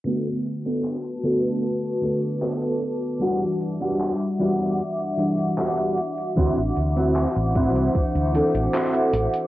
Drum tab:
HH |xxxx-xxxxxxx-xxx|xxxxxxxxxxxxxxxx|xxxxxxxxxxxxxxxx|
CP |----x-------x---|----x-------x---|----x-------x---|
BD |----------------|----------------|o-----o-o-------|